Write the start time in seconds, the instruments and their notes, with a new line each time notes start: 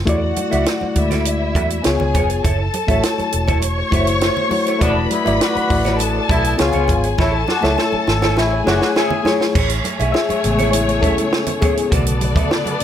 0.05 fingered electric bass E2, reed electric piano A3 E4 F#4 D5, clean electric guitar F#4 A4 D5, string section F#4 F#5, kick, closed hi-hat, muted conga, low conga
0.22 muted clean electric guitar stroke
0.36 muted clean electric guitar stroke, closed hi-hat, muted conga, high conga
0.50 fingered electric bass C#2, reed electric piano A3 E4 F#4 D5, clean electric guitar F#4 A4 E5, closed hi-hat, high conga
0.66 snare, closed hi-hat
0.81 muted clean electric guitar stroke, muted fingered electric bass stroke, high conga
0.95 fingered electric bass D2, reed electric piano G#3 E4 F#4 D5, string section E4 E5, kick, closed hi-hat, muted conga
1.01 reed electric piano A3
1.11 clean electric guitar F#4 A4 D5, snare, closed hi-hat, low conga
1.25 muted clean electric guitar stroke, closed hi-hat
1.40 muted clean electric guitar stroke
1.55 fingered electric bass E2, clean electric guitar F#4 A4 E5, kick, closed hi-hat, high conga
1.70 muted clean electric guitar stroke, closed hi-hat
1.83 fingered electric bass C#2, reed electric piano B3 F4 G#4 C#5, string section G#4 G#5, snare, closed hi-hat, muted conga
1.99 fingered electric bass C#2, muted clean electric guitar stroke, low conga
2.14 fingered electric bass F1, clean electric guitar F4 B4 C#5, kick, closed hi-hat, muted conga, high conga
2.29 muted clean electric guitar stroke, closed hi-hat
2.44 fingered electric bass F#1, clean electric guitar E4 A4 C#5, string section A4 A5, kick, closed hi-hat, low conga
2.59 muted clean electric guitar stroke
2.73 muted clean electric guitar stroke, closed hi-hat, muted conga, high conga
2.87 fingered electric bass A1, reed electric piano A3 E4 F#4 C#5, clean electric guitar E4 A4 E5, kick, closed hi-hat, high conga
3.03 muted clean electric guitar stroke, snare, closed hi-hat, muted conga
3.18 muted clean electric guitar stroke, muted fingered electric bass stroke, closed hi-hat, high conga
3.32 fingered electric bass E1, closed hi-hat, muted conga
3.47 clean electric guitar E4 A4 C#5, kick, closed hi-hat, low conga
3.62 string section C#5 C#6, muted clean electric guitar stroke, closed hi-hat, muted conga
3.78 muted clean electric guitar stroke
3.91 fingered electric bass F#1, reed electric piano A3 E4 F#4 C5, clean electric guitar E4 A4 E5, kick, closed hi-hat, muted conga, high conga
4.01 reed electric piano C#5
4.07 muted clean electric guitar stroke, closed hi-hat
4.21 clean electric guitar E4 A4 C#5, snare, closed hi-hat
4.37 low conga
4.49 reed electric piano A3 E4 F#4 C#5, muted clean electric guitar stroke, open hi-hat, muted conga, high conga
4.66 clean electric guitar E4 A4 C#5, closed hi-hat
4.79 fingered electric bass E1, reed electric piano A3 E4 F#4 D5, horn section A3 B3 D4, clean electric guitar F#4 A4 D5, string section B4 B5, kick, closed hi-hat, muted conga, low conga
4.96 muted clean electric guitar stroke
5.11 horn section A3 B3 E4, muted clean electric guitar stroke, closed hi-hat, muted conga, high conga
5.24 fingered electric bass G#1, reed electric piano A3 E4 F#4 D5, clean electric guitar F#4 A4 E5, closed hi-hat, high conga
5.41 horn section B3 D4 F#4, muted clean electric guitar stroke, snare, closed hi-hat
5.55 muted clean electric guitar stroke, muted fingered electric bass stroke, closed hi-hat, high conga
5.69 fingered electric bass A1, reed electric piano A3 E4 F#4 D5, kick, open hi-hat, muted conga
5.85 clean electric guitar F#4 A4 D5, snare, closed hi-hat, low conga
5.99 horn section A3 B3 D4, string section A4 A5, muted clean electric guitar stroke, closed hi-hat, muted conga
6.15 muted clean electric guitar stroke
6.29 fingered electric bass B1, horn section A3 B3 E4, clean electric guitar F#4 A4 E5, kick, closed hi-hat, muted conga, high conga
6.44 muted clean electric guitar stroke, closed hi-hat
6.57 fingered electric bass C#2, reed electric piano B3 F4 G#4 C#5, horn section B3 C#4 F4, string section G#4 G#5, muted clean electric guitar stroke, snare, closed hi-hat, muted conga
6.73 fingered electric bass C#2, clean electric guitar F4 B4 C#5, closed hi-hat, low conga
6.88 fingered electric bass G#1, muted clean electric guitar stroke, kick, closed hi-hat, high conga
7.03 muted clean electric guitar stroke, closed hi-hat
7.18 fingered electric bass A1, horn section A3 C#4 E4, clean electric guitar E4 G#4 C#5, string section A4 A5, kick, snare, muted conga, low conga
7.33 muted clean electric guitar stroke
7.48 horn section B3 D4 F#4, muted clean electric guitar stroke, snare, high conga
7.61 fingered electric bass C#2, reed electric piano A3 E4 A4 C#5, clean electric guitar E4 G#4 E5, snare, high conga
7.78 horn section C#4 E4 A4, muted clean electric guitar stroke, snare, muted conga
7.92 muted clean electric guitar stroke, muted fingered electric bass stroke, high conga
8.07 fingered electric bass G#1, snare, muted conga
8.22 clean electric guitar E4 G#4 C#5, snare, low conga
8.37 fingered electric bass A1, horn section A3 C#4 E4, string section G#4 G#5, muted clean electric guitar stroke, snare, muted conga
8.52 muted clean electric guitar stroke
8.64 fingered electric bass F#1, reed electric piano A3 E4 G#4 C#5, horn section B3 D4 F#4, clean electric guitar E4 G#4 E5, snare, muted conga, high conga
8.81 muted clean electric guitar stroke, snare
8.96 horn section C#4 E4 G#4, clean electric guitar E4 G#4 C#5, snare, muted conga
9.10 muted clean electric guitar stroke, low conga
9.24 reed electric piano A3 E4 G#4 C#5, clean electric guitar E4 G#4 C#5, snare, muted conga, high conga
9.40 muted clean electric guitar stroke, snare
9.55 fingered electric bass A1, string section A3 G#4 C#5, clean electric guitar E4 G#4 C#5, kick, crash, muted conga
9.69 muted clean electric guitar stroke, closed hi-hat
9.84 muted clean electric guitar stroke, closed hi-hat, high conga
10.00 fingered electric bass B1, clean electric guitar E4 G#4 E5, closed hi-hat, high conga
10.12 reed electric piano G#4 E5, muted clean electric guitar stroke, snare, muted conga
10.29 muted clean electric guitar stroke, muted fingered electric bass stroke, closed hi-hat, high conga
10.43 fingered electric bass A1, reed electric piano C#3 G#3 B3, closed hi-hat
10.58 clean electric guitar E4 G#4 C#5, closed hi-hat, low conga
10.72 reed electric piano E4 C#5, muted clean electric guitar stroke, closed hi-hat
10.88 muted clean electric guitar stroke, closed hi-hat
11.01 reed electric piano C#4 A4, clean electric guitar E4 G#4 E5, kick, closed hi-hat, high conga
11.17 muted clean electric guitar stroke, closed hi-hat
11.32 muted clean electric guitar stroke, snare, muted conga
11.46 muted clean electric guitar stroke, closed hi-hat, low conga
11.61 reed electric piano B3 G#4, clean electric guitar E4 G#4 C#5, kick, closed hi-hat, high conga
11.77 muted clean electric guitar stroke, closed hi-hat
11.91 fingered electric bass B1, reed electric piano C#3 D3 A3 F#4, string section B3 A4 D5, clean electric guitar F#4 A4 D5, kick, closed hi-hat
12.06 muted clean electric guitar stroke, closed hi-hat
12.21 muted clean electric guitar stroke, closed hi-hat, high conga
12.36 clean electric guitar F#4 A4 E5, kick, closed hi-hat, high conga
12.51 muted clean electric guitar stroke, snare, muted conga
12.65 muted clean electric guitar stroke, closed hi-hat, high conga
12.80 reed electric piano D3 A3 C#4, closed hi-hat